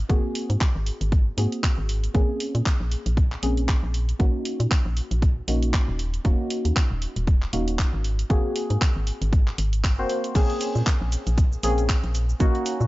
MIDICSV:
0, 0, Header, 1, 4, 480
1, 0, Start_track
1, 0, Key_signature, -5, "minor"
1, 0, Tempo, 512821
1, 89, Time_signature, 4, 2, 24, 8
1, 12047, End_track
2, 0, Start_track
2, 0, Title_t, "Synth stab"
2, 0, Program_c, 0, 62
2, 83, Note_on_c, 0, 58, 99
2, 87, Note_on_c, 0, 60, 91
2, 91, Note_on_c, 0, 66, 93
2, 94, Note_on_c, 0, 68, 106
2, 1261, Note_off_c, 0, 58, 0
2, 1263, Note_off_c, 0, 60, 0
2, 1265, Note_off_c, 0, 66, 0
2, 1267, Note_off_c, 0, 68, 0
2, 1283, Note_on_c, 0, 58, 71
2, 1287, Note_on_c, 0, 60, 70
2, 1291, Note_on_c, 0, 66, 68
2, 1295, Note_on_c, 0, 68, 81
2, 1981, Note_off_c, 0, 58, 0
2, 1983, Note_off_c, 0, 60, 0
2, 1985, Note_off_c, 0, 66, 0
2, 1987, Note_off_c, 0, 68, 0
2, 2003, Note_on_c, 0, 58, 103
2, 2007, Note_on_c, 0, 60, 86
2, 2011, Note_on_c, 0, 61, 89
2, 2015, Note_on_c, 0, 68, 104
2, 3181, Note_off_c, 0, 58, 0
2, 3183, Note_off_c, 0, 60, 0
2, 3185, Note_off_c, 0, 61, 0
2, 3187, Note_off_c, 0, 68, 0
2, 3206, Note_on_c, 0, 58, 74
2, 3208, Note_on_c, 0, 60, 66
2, 3210, Note_on_c, 0, 61, 68
2, 3211, Note_on_c, 0, 68, 86
2, 3675, Note_off_c, 0, 58, 0
2, 3676, Note_off_c, 0, 60, 0
2, 3677, Note_off_c, 0, 61, 0
2, 3678, Note_off_c, 0, 68, 0
2, 3922, Note_on_c, 0, 58, 102
2, 3927, Note_on_c, 0, 61, 92
2, 3931, Note_on_c, 0, 63, 90
2, 3934, Note_on_c, 0, 66, 107
2, 5101, Note_off_c, 0, 58, 0
2, 5103, Note_off_c, 0, 61, 0
2, 5105, Note_off_c, 0, 63, 0
2, 5107, Note_off_c, 0, 66, 0
2, 5126, Note_on_c, 0, 58, 73
2, 5128, Note_on_c, 0, 61, 68
2, 5130, Note_on_c, 0, 63, 69
2, 5132, Note_on_c, 0, 66, 85
2, 5595, Note_off_c, 0, 58, 0
2, 5596, Note_off_c, 0, 61, 0
2, 5597, Note_off_c, 0, 63, 0
2, 5598, Note_off_c, 0, 66, 0
2, 5843, Note_on_c, 0, 58, 97
2, 5847, Note_on_c, 0, 61, 88
2, 5851, Note_on_c, 0, 63, 93
2, 5856, Note_on_c, 0, 66, 111
2, 7021, Note_off_c, 0, 58, 0
2, 7023, Note_off_c, 0, 61, 0
2, 7025, Note_off_c, 0, 63, 0
2, 7027, Note_off_c, 0, 66, 0
2, 7046, Note_on_c, 0, 58, 77
2, 7048, Note_on_c, 0, 61, 68
2, 7050, Note_on_c, 0, 63, 68
2, 7052, Note_on_c, 0, 66, 83
2, 7515, Note_off_c, 0, 58, 0
2, 7516, Note_off_c, 0, 61, 0
2, 7517, Note_off_c, 0, 63, 0
2, 7518, Note_off_c, 0, 66, 0
2, 7764, Note_on_c, 0, 58, 98
2, 7767, Note_on_c, 0, 60, 92
2, 7771, Note_on_c, 0, 66, 88
2, 7776, Note_on_c, 0, 68, 110
2, 8942, Note_off_c, 0, 58, 0
2, 8943, Note_off_c, 0, 60, 0
2, 8945, Note_off_c, 0, 66, 0
2, 8947, Note_off_c, 0, 68, 0
2, 9344, Note_on_c, 0, 58, 91
2, 9346, Note_on_c, 0, 60, 84
2, 9348, Note_on_c, 0, 66, 83
2, 9350, Note_on_c, 0, 72, 99
2, 9663, Note_off_c, 0, 58, 0
2, 9664, Note_off_c, 0, 60, 0
2, 9665, Note_off_c, 0, 66, 0
2, 9666, Note_off_c, 0, 72, 0
2, 9684, Note_on_c, 0, 58, 96
2, 9687, Note_on_c, 0, 60, 91
2, 9691, Note_on_c, 0, 61, 95
2, 9695, Note_on_c, 0, 68, 111
2, 10862, Note_off_c, 0, 58, 0
2, 10863, Note_off_c, 0, 60, 0
2, 10865, Note_off_c, 0, 61, 0
2, 10867, Note_off_c, 0, 68, 0
2, 10886, Note_on_c, 0, 58, 72
2, 10888, Note_on_c, 0, 60, 73
2, 10891, Note_on_c, 0, 61, 70
2, 10893, Note_on_c, 0, 68, 82
2, 11355, Note_off_c, 0, 58, 0
2, 11356, Note_off_c, 0, 60, 0
2, 11357, Note_off_c, 0, 61, 0
2, 11358, Note_off_c, 0, 68, 0
2, 11602, Note_on_c, 0, 58, 101
2, 11606, Note_on_c, 0, 61, 94
2, 11609, Note_on_c, 0, 63, 90
2, 11614, Note_on_c, 0, 66, 108
2, 12047, Note_off_c, 0, 58, 0
2, 12047, Note_off_c, 0, 61, 0
2, 12047, Note_off_c, 0, 63, 0
2, 12047, Note_off_c, 0, 66, 0
2, 12047, End_track
3, 0, Start_track
3, 0, Title_t, "FM bass"
3, 0, Program_c, 1, 39
3, 89, Note_on_c, 1, 32, 94
3, 176, Note_off_c, 1, 32, 0
3, 465, Note_on_c, 1, 44, 87
3, 531, Note_off_c, 1, 44, 0
3, 706, Note_on_c, 1, 32, 103
3, 847, Note_off_c, 1, 32, 0
3, 946, Note_on_c, 1, 32, 89
3, 1229, Note_off_c, 1, 32, 0
3, 1289, Note_on_c, 1, 44, 94
3, 1376, Note_off_c, 1, 44, 0
3, 1666, Note_on_c, 1, 32, 95
3, 1949, Note_off_c, 1, 32, 0
3, 2009, Note_on_c, 1, 34, 100
3, 2096, Note_off_c, 1, 34, 0
3, 2385, Note_on_c, 1, 46, 86
3, 2451, Note_off_c, 1, 46, 0
3, 2625, Note_on_c, 1, 34, 102
3, 2766, Note_off_c, 1, 34, 0
3, 2865, Note_on_c, 1, 34, 93
3, 3149, Note_off_c, 1, 34, 0
3, 3210, Note_on_c, 1, 34, 78
3, 3507, Note_off_c, 1, 34, 0
3, 3586, Note_on_c, 1, 34, 96
3, 3869, Note_off_c, 1, 34, 0
3, 3929, Note_on_c, 1, 34, 100
3, 4016, Note_off_c, 1, 34, 0
3, 4304, Note_on_c, 1, 46, 88
3, 4371, Note_off_c, 1, 46, 0
3, 4544, Note_on_c, 1, 34, 106
3, 4686, Note_off_c, 1, 34, 0
3, 4784, Note_on_c, 1, 34, 88
3, 5068, Note_off_c, 1, 34, 0
3, 5128, Note_on_c, 1, 34, 78
3, 5426, Note_off_c, 1, 34, 0
3, 5505, Note_on_c, 1, 27, 102
3, 5789, Note_off_c, 1, 27, 0
3, 5849, Note_on_c, 1, 27, 99
3, 5936, Note_off_c, 1, 27, 0
3, 6225, Note_on_c, 1, 39, 87
3, 6291, Note_off_c, 1, 39, 0
3, 6465, Note_on_c, 1, 27, 104
3, 6606, Note_off_c, 1, 27, 0
3, 6705, Note_on_c, 1, 27, 91
3, 6989, Note_off_c, 1, 27, 0
3, 7049, Note_on_c, 1, 27, 82
3, 7346, Note_off_c, 1, 27, 0
3, 7426, Note_on_c, 1, 32, 98
3, 7709, Note_off_c, 1, 32, 0
3, 7769, Note_on_c, 1, 32, 100
3, 7856, Note_off_c, 1, 32, 0
3, 8146, Note_on_c, 1, 44, 87
3, 8211, Note_off_c, 1, 44, 0
3, 8386, Note_on_c, 1, 32, 99
3, 8527, Note_off_c, 1, 32, 0
3, 8626, Note_on_c, 1, 32, 93
3, 8909, Note_off_c, 1, 32, 0
3, 8970, Note_on_c, 1, 32, 106
3, 9346, Note_on_c, 1, 30, 97
3, 9360, Note_off_c, 1, 32, 0
3, 9412, Note_off_c, 1, 30, 0
3, 9690, Note_on_c, 1, 34, 100
3, 9776, Note_off_c, 1, 34, 0
3, 10066, Note_on_c, 1, 46, 84
3, 10132, Note_off_c, 1, 46, 0
3, 10306, Note_on_c, 1, 34, 107
3, 10447, Note_off_c, 1, 34, 0
3, 10547, Note_on_c, 1, 34, 91
3, 10830, Note_off_c, 1, 34, 0
3, 10890, Note_on_c, 1, 34, 77
3, 11187, Note_off_c, 1, 34, 0
3, 11267, Note_on_c, 1, 34, 102
3, 11549, Note_off_c, 1, 34, 0
3, 11609, Note_on_c, 1, 34, 97
3, 11696, Note_off_c, 1, 34, 0
3, 11986, Note_on_c, 1, 46, 92
3, 12047, Note_off_c, 1, 46, 0
3, 12047, End_track
4, 0, Start_track
4, 0, Title_t, "Drums"
4, 89, Note_on_c, 9, 36, 120
4, 89, Note_on_c, 9, 42, 51
4, 183, Note_off_c, 9, 36, 0
4, 183, Note_off_c, 9, 42, 0
4, 329, Note_on_c, 9, 46, 106
4, 423, Note_off_c, 9, 46, 0
4, 466, Note_on_c, 9, 42, 59
4, 559, Note_off_c, 9, 42, 0
4, 569, Note_on_c, 9, 36, 111
4, 569, Note_on_c, 9, 42, 47
4, 572, Note_on_c, 9, 39, 111
4, 663, Note_off_c, 9, 36, 0
4, 663, Note_off_c, 9, 42, 0
4, 666, Note_off_c, 9, 39, 0
4, 809, Note_on_c, 9, 46, 105
4, 902, Note_off_c, 9, 46, 0
4, 946, Note_on_c, 9, 42, 66
4, 1040, Note_off_c, 9, 42, 0
4, 1049, Note_on_c, 9, 36, 119
4, 1049, Note_on_c, 9, 42, 51
4, 1143, Note_off_c, 9, 36, 0
4, 1143, Note_off_c, 9, 42, 0
4, 1289, Note_on_c, 9, 46, 107
4, 1383, Note_off_c, 9, 46, 0
4, 1426, Note_on_c, 9, 42, 57
4, 1520, Note_off_c, 9, 42, 0
4, 1529, Note_on_c, 9, 36, 100
4, 1530, Note_on_c, 9, 42, 46
4, 1533, Note_on_c, 9, 39, 115
4, 1623, Note_off_c, 9, 36, 0
4, 1623, Note_off_c, 9, 42, 0
4, 1627, Note_off_c, 9, 39, 0
4, 1769, Note_on_c, 9, 46, 109
4, 1863, Note_off_c, 9, 46, 0
4, 1906, Note_on_c, 9, 42, 63
4, 2000, Note_off_c, 9, 42, 0
4, 2009, Note_on_c, 9, 36, 120
4, 2009, Note_on_c, 9, 42, 49
4, 2102, Note_off_c, 9, 42, 0
4, 2103, Note_off_c, 9, 36, 0
4, 2249, Note_on_c, 9, 46, 103
4, 2343, Note_off_c, 9, 46, 0
4, 2385, Note_on_c, 9, 42, 64
4, 2479, Note_off_c, 9, 42, 0
4, 2489, Note_on_c, 9, 36, 105
4, 2489, Note_on_c, 9, 42, 49
4, 2492, Note_on_c, 9, 39, 106
4, 2582, Note_off_c, 9, 42, 0
4, 2583, Note_off_c, 9, 36, 0
4, 2586, Note_off_c, 9, 39, 0
4, 2729, Note_on_c, 9, 46, 105
4, 2822, Note_off_c, 9, 46, 0
4, 2865, Note_on_c, 9, 42, 65
4, 2959, Note_off_c, 9, 42, 0
4, 2969, Note_on_c, 9, 36, 118
4, 2969, Note_on_c, 9, 42, 49
4, 3062, Note_off_c, 9, 36, 0
4, 3062, Note_off_c, 9, 42, 0
4, 3109, Note_on_c, 9, 39, 34
4, 3203, Note_off_c, 9, 39, 0
4, 3209, Note_on_c, 9, 46, 105
4, 3302, Note_off_c, 9, 46, 0
4, 3345, Note_on_c, 9, 42, 60
4, 3439, Note_off_c, 9, 42, 0
4, 3449, Note_on_c, 9, 36, 101
4, 3449, Note_on_c, 9, 42, 49
4, 3452, Note_on_c, 9, 39, 106
4, 3542, Note_off_c, 9, 36, 0
4, 3542, Note_off_c, 9, 42, 0
4, 3546, Note_off_c, 9, 39, 0
4, 3689, Note_on_c, 9, 46, 100
4, 3782, Note_off_c, 9, 46, 0
4, 3826, Note_on_c, 9, 42, 61
4, 3920, Note_off_c, 9, 42, 0
4, 3929, Note_on_c, 9, 36, 110
4, 3929, Note_on_c, 9, 42, 53
4, 4022, Note_off_c, 9, 36, 0
4, 4022, Note_off_c, 9, 42, 0
4, 4169, Note_on_c, 9, 46, 102
4, 4262, Note_off_c, 9, 46, 0
4, 4306, Note_on_c, 9, 42, 67
4, 4399, Note_off_c, 9, 42, 0
4, 4408, Note_on_c, 9, 42, 50
4, 4409, Note_on_c, 9, 36, 101
4, 4412, Note_on_c, 9, 39, 111
4, 4502, Note_off_c, 9, 36, 0
4, 4502, Note_off_c, 9, 42, 0
4, 4505, Note_off_c, 9, 39, 0
4, 4648, Note_on_c, 9, 46, 95
4, 4742, Note_off_c, 9, 46, 0
4, 4785, Note_on_c, 9, 42, 62
4, 4879, Note_off_c, 9, 42, 0
4, 4889, Note_on_c, 9, 36, 112
4, 4889, Note_on_c, 9, 42, 52
4, 4982, Note_off_c, 9, 36, 0
4, 4982, Note_off_c, 9, 42, 0
4, 5129, Note_on_c, 9, 46, 99
4, 5223, Note_off_c, 9, 46, 0
4, 5265, Note_on_c, 9, 42, 65
4, 5359, Note_off_c, 9, 42, 0
4, 5368, Note_on_c, 9, 42, 52
4, 5369, Note_on_c, 9, 36, 93
4, 5372, Note_on_c, 9, 39, 108
4, 5462, Note_off_c, 9, 36, 0
4, 5462, Note_off_c, 9, 42, 0
4, 5465, Note_off_c, 9, 39, 0
4, 5608, Note_on_c, 9, 46, 95
4, 5702, Note_off_c, 9, 46, 0
4, 5745, Note_on_c, 9, 42, 59
4, 5838, Note_off_c, 9, 42, 0
4, 5848, Note_on_c, 9, 42, 54
4, 5849, Note_on_c, 9, 36, 112
4, 5942, Note_off_c, 9, 36, 0
4, 5942, Note_off_c, 9, 42, 0
4, 6088, Note_on_c, 9, 46, 103
4, 6182, Note_off_c, 9, 46, 0
4, 6225, Note_on_c, 9, 42, 64
4, 6319, Note_off_c, 9, 42, 0
4, 6328, Note_on_c, 9, 42, 55
4, 6329, Note_on_c, 9, 36, 101
4, 6332, Note_on_c, 9, 39, 112
4, 6422, Note_off_c, 9, 36, 0
4, 6422, Note_off_c, 9, 42, 0
4, 6425, Note_off_c, 9, 39, 0
4, 6569, Note_on_c, 9, 46, 96
4, 6662, Note_off_c, 9, 46, 0
4, 6705, Note_on_c, 9, 42, 68
4, 6799, Note_off_c, 9, 42, 0
4, 6808, Note_on_c, 9, 42, 54
4, 6809, Note_on_c, 9, 36, 112
4, 6902, Note_off_c, 9, 36, 0
4, 6902, Note_off_c, 9, 42, 0
4, 6949, Note_on_c, 9, 39, 34
4, 7042, Note_off_c, 9, 39, 0
4, 7049, Note_on_c, 9, 46, 98
4, 7142, Note_off_c, 9, 46, 0
4, 7185, Note_on_c, 9, 42, 67
4, 7279, Note_off_c, 9, 42, 0
4, 7289, Note_on_c, 9, 36, 92
4, 7289, Note_on_c, 9, 42, 54
4, 7292, Note_on_c, 9, 39, 113
4, 7382, Note_off_c, 9, 42, 0
4, 7383, Note_off_c, 9, 36, 0
4, 7386, Note_off_c, 9, 39, 0
4, 7529, Note_on_c, 9, 46, 92
4, 7622, Note_off_c, 9, 46, 0
4, 7665, Note_on_c, 9, 42, 64
4, 7759, Note_off_c, 9, 42, 0
4, 7769, Note_on_c, 9, 36, 116
4, 7769, Note_on_c, 9, 42, 54
4, 7862, Note_off_c, 9, 36, 0
4, 7862, Note_off_c, 9, 42, 0
4, 8009, Note_on_c, 9, 46, 107
4, 8102, Note_off_c, 9, 46, 0
4, 8146, Note_on_c, 9, 42, 71
4, 8239, Note_off_c, 9, 42, 0
4, 8249, Note_on_c, 9, 36, 106
4, 8249, Note_on_c, 9, 42, 54
4, 8252, Note_on_c, 9, 39, 119
4, 8342, Note_off_c, 9, 42, 0
4, 8343, Note_off_c, 9, 36, 0
4, 8346, Note_off_c, 9, 39, 0
4, 8488, Note_on_c, 9, 46, 104
4, 8582, Note_off_c, 9, 46, 0
4, 8626, Note_on_c, 9, 42, 68
4, 8720, Note_off_c, 9, 42, 0
4, 8729, Note_on_c, 9, 36, 115
4, 8730, Note_on_c, 9, 42, 54
4, 8823, Note_off_c, 9, 36, 0
4, 8823, Note_off_c, 9, 42, 0
4, 8870, Note_on_c, 9, 39, 37
4, 8964, Note_off_c, 9, 39, 0
4, 8970, Note_on_c, 9, 46, 103
4, 9064, Note_off_c, 9, 46, 0
4, 9107, Note_on_c, 9, 42, 66
4, 9200, Note_off_c, 9, 42, 0
4, 9209, Note_on_c, 9, 36, 96
4, 9210, Note_on_c, 9, 42, 56
4, 9213, Note_on_c, 9, 39, 117
4, 9303, Note_off_c, 9, 36, 0
4, 9303, Note_off_c, 9, 42, 0
4, 9307, Note_off_c, 9, 39, 0
4, 9449, Note_on_c, 9, 46, 100
4, 9543, Note_off_c, 9, 46, 0
4, 9586, Note_on_c, 9, 42, 67
4, 9680, Note_off_c, 9, 42, 0
4, 9689, Note_on_c, 9, 36, 120
4, 9690, Note_on_c, 9, 42, 88
4, 9690, Note_on_c, 9, 49, 104
4, 9691, Note_on_c, 9, 82, 47
4, 9783, Note_off_c, 9, 36, 0
4, 9783, Note_off_c, 9, 42, 0
4, 9783, Note_off_c, 9, 49, 0
4, 9785, Note_off_c, 9, 82, 0
4, 9826, Note_on_c, 9, 42, 52
4, 9920, Note_off_c, 9, 42, 0
4, 9929, Note_on_c, 9, 46, 109
4, 9930, Note_on_c, 9, 82, 79
4, 10023, Note_off_c, 9, 46, 0
4, 10024, Note_off_c, 9, 82, 0
4, 10068, Note_on_c, 9, 82, 34
4, 10161, Note_off_c, 9, 82, 0
4, 10169, Note_on_c, 9, 36, 106
4, 10170, Note_on_c, 9, 42, 84
4, 10171, Note_on_c, 9, 82, 43
4, 10173, Note_on_c, 9, 39, 125
4, 10263, Note_off_c, 9, 36, 0
4, 10263, Note_off_c, 9, 42, 0
4, 10264, Note_off_c, 9, 82, 0
4, 10267, Note_off_c, 9, 39, 0
4, 10410, Note_on_c, 9, 46, 101
4, 10411, Note_on_c, 9, 82, 76
4, 10503, Note_off_c, 9, 46, 0
4, 10504, Note_off_c, 9, 82, 0
4, 10546, Note_on_c, 9, 42, 56
4, 10548, Note_on_c, 9, 82, 33
4, 10640, Note_off_c, 9, 42, 0
4, 10641, Note_off_c, 9, 82, 0
4, 10649, Note_on_c, 9, 36, 122
4, 10649, Note_on_c, 9, 42, 81
4, 10650, Note_on_c, 9, 82, 43
4, 10743, Note_off_c, 9, 36, 0
4, 10743, Note_off_c, 9, 42, 0
4, 10744, Note_off_c, 9, 82, 0
4, 10787, Note_on_c, 9, 82, 30
4, 10881, Note_off_c, 9, 82, 0
4, 10890, Note_on_c, 9, 46, 107
4, 10891, Note_on_c, 9, 82, 82
4, 10983, Note_off_c, 9, 46, 0
4, 10984, Note_off_c, 9, 82, 0
4, 11026, Note_on_c, 9, 42, 36
4, 11027, Note_on_c, 9, 82, 32
4, 11120, Note_off_c, 9, 42, 0
4, 11121, Note_off_c, 9, 82, 0
4, 11129, Note_on_c, 9, 36, 98
4, 11129, Note_on_c, 9, 42, 79
4, 11131, Note_on_c, 9, 82, 42
4, 11133, Note_on_c, 9, 39, 121
4, 11223, Note_off_c, 9, 36, 0
4, 11223, Note_off_c, 9, 42, 0
4, 11224, Note_off_c, 9, 82, 0
4, 11227, Note_off_c, 9, 39, 0
4, 11266, Note_on_c, 9, 42, 39
4, 11360, Note_off_c, 9, 42, 0
4, 11369, Note_on_c, 9, 46, 104
4, 11371, Note_on_c, 9, 82, 76
4, 11463, Note_off_c, 9, 46, 0
4, 11464, Note_off_c, 9, 82, 0
4, 11507, Note_on_c, 9, 82, 32
4, 11601, Note_off_c, 9, 82, 0
4, 11608, Note_on_c, 9, 42, 80
4, 11609, Note_on_c, 9, 36, 127
4, 11609, Note_on_c, 9, 82, 42
4, 11702, Note_off_c, 9, 36, 0
4, 11702, Note_off_c, 9, 42, 0
4, 11703, Note_off_c, 9, 82, 0
4, 11746, Note_on_c, 9, 42, 48
4, 11840, Note_off_c, 9, 42, 0
4, 11849, Note_on_c, 9, 46, 108
4, 11850, Note_on_c, 9, 82, 79
4, 11943, Note_off_c, 9, 46, 0
4, 11944, Note_off_c, 9, 82, 0
4, 11987, Note_on_c, 9, 82, 31
4, 12047, Note_off_c, 9, 82, 0
4, 12047, End_track
0, 0, End_of_file